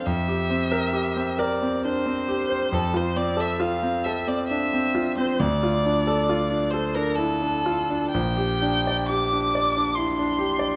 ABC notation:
X:1
M:3/4
L:1/16
Q:1/4=67
K:F
V:1 name="Violin"
e6 d2 c4 | A c d e f2 e d e3 c | d6 c B A4 | g4 d'4 c'4 |]
V:2 name="Grand piano"
F,, G C B G C B C D C G c | F,, F C A F C A C D C F C | D,, F D A F D A D E D F D | B,,, G D d G D d D E D G d |]